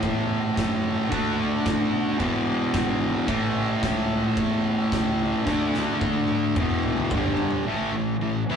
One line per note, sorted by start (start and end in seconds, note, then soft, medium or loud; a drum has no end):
0.00 0.42 E2 medium
0.00 1.09 A2 loud
0.00 1.11 E3 loud
0.00 1.11 A3 loud
0.00 kick loud
0.00 crash medium
0.56 0.96 F#2 medium
0.56 kick loud
0.56 snare loud
0.56 crash medium
1.09 1.51 D2 loud
1.09 2.18 D3 medium
1.09 2.19 A3 loud
1.09 kick loud
1.09 crash medium
1.14 2.20 D4 loud
1.65 1.86 A2 medium
1.65 kick loud
1.65 snare loud
1.65 crash medium
1.92 2.12 B2 medium
2.18 2.60 E1 medium
2.18 3.26 E2 medium
2.18 3.27 B2 medium
2.18 3.28 E3 loud
2.18 kick loud
2.18 crash medium
2.73 3.14 G#1 medium
2.73 kick loud
2.73 snare loud
2.73 crash medium
3.27 3.68 A1 loud
3.27 5.45 A2 medium
3.27 5.45 E3 loud
3.27 5.47 A3 loud
3.27 kick loud
3.27 crash medium
3.82 4.23 C#2 medium
3.82 kick loud
3.82 snare loud
3.82 crash medium
4.37 4.77 E2 loud
4.37 kick loud
4.37 crash medium
4.92 5.32 C#2 loud
4.92 kick loud
4.92 snare loud
4.92 crash medium
5.46 5.87 D2 loud
5.46 6.54 D3 loud
5.46 6.55 A3 loud
5.46 kick loud
5.46 snare medium
5.51 6.57 D4 loud
5.74 snare medium
6.01 6.22 A2 medium
6.01 kick loud
6.01 high tom medium
6.28 6.49 D2 medium
6.28 high tom medium
6.55 6.96 E1 loud
6.55 7.09 E2 loud
6.55 7.11 B2 loud
6.55 7.11 E3 medium
6.55 kick loud
6.55 mid tom medium
6.69 mid tom medium
6.83 mid tom loud
6.97 mid tom medium
7.10 7.50 G1 medium
7.10 7.65 G2 medium
7.10 7.66 D3 loud
7.10 kick loud
7.10 mid tom loud
7.16 7.67 G3 loud
7.23 floor tom medium
7.37 floor tom loud
7.51 floor tom medium
7.65 7.91 A1 medium
7.65 7.92 A2 loud
7.65 7.92 E3 loud
7.65 7.94 A3 loud
7.93 8.19 A1 medium
7.93 8.15 A2 medium
7.93 8.15 E3 medium
8.20 8.46 A1 medium
8.20 8.43 A2 medium
8.20 8.43 E3 medium
8.49 8.56 E2 medium
8.49 8.56 E3 medium
8.49 8.56 B3 loud
8.49 8.56 E4 medium